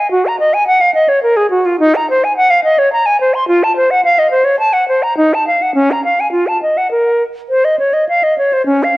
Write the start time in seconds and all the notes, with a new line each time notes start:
Already playing: G#5
0.11 F#4
0.27 A#5
0.40 D#5
0.54 G#5
0.67 F#5
0.81 F5
0.94 D#5
1.09 C#5
1.23 A#4
1.37 G#4
1.50 F#4
1.66 F4
1.80 D#4
1.95 A#5
2.10 C5
2.24 G#5
2.37 F#5
2.50 F5
2.64 D#5
2.79 C#5
2.93 A#5
3.06 G#5
3.21 C5
3.34 C6
3.48 F4
3.63 A5
3.76 C5
3.91 F#5
4.05 F5
4.19 D#5
4.31 C5
4.44 C#5
4.59 A5
4.73 F#5
4.88 C5
5.03 A#5
5.17 D#4
5.34 A5
5.47 F5
5.62 F#5
5.75 C#4
5.91 A#5
6.04 F5
6.20 G#5
6.32 F4
6.47 A5
6.63 D#5
6.77 F#5
6.91 A#4
7.49 C5
7.65 D#5
7.79 C#5
7.93 D#5
8.09 F5
8.23 D#5
8.38 C#5
8.53 C5
8.66 C#4
8.84 F5